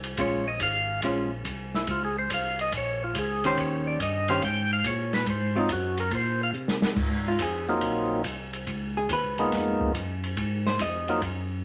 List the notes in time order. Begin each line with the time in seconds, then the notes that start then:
Already playing: C2
0.04 ride
0.17 A#1 G#3 C#4 F4 C#5, kick, ride
0.48 D#5
0.60 G#1 F5, kick, hi-hat pedal, ride
1.02 A#1 G#3 C#4 F4, kick, ride
1.45 C2, kick, hi-hat pedal, ride
1.74 E4, snare
1.87 C#2 F4, kick, ride
2.05 G#4
2.19 C5
2.30 C2 F5, kick, hi-hat pedal, ride
2.59 D#5, ride
2.72 A#1, kick, ride
2.77 C#5
3.04 F4
3.15 C#2 G#4, kick, hi-hat pedal, ride
3.44 D#3 C#4 G4 C5, ride
3.57 D#2 C#5, kick, ride
3.87 D5
4.00 G2 D#5, kick, hi-hat pedal, ride
4.28 D#3 C#4 G4 C5 F5, ride
4.42 G#2 G5, kick, ride
4.73 F5
4.84 A#2 C#5, kick, hi-hat pedal, ride
5.13 B4, snare, ride
5.26 G#2 C5, kick, ride
5.55 F#3 C4 D#4 F4
5.69 F#2 F#4, kick, hi-hat pedal, ride
5.97 A#4, ride
6.11 A#2 C5, kick, ride
6.43 F5
6.53 C3, hi-hat pedal
6.68 snare
6.82 snare
6.96 G#2, kick, crash
7.28 F4
7.39 F2 G#4, kick, hi-hat pedal, ride
7.69 F#3 A#3 C4 D#4 F4
7.81 A#1, kick, ride
8.24 C2, kick, hi-hat pedal, ride
8.53 ride
8.67 C#2, kick, ride
8.97 G#4
9.09 D#2 B4, kick, hi-hat pedal, ride
9.24 C#2
9.38 B1 G#3 A#3 B3 D#4 F4, ride
9.52 F2, kick, snare, ride
9.81 kick
9.94 F#2, kick, hi-hat pedal, ride
10.24 ride
10.37 G#2, kick, ride
10.66 C5, snare
10.79 F2 D#5, kick, hi-hat pedal, ride
11.08 F#3 A#3 C4 D#4 F4, ride
11.22 F#2, kick, ride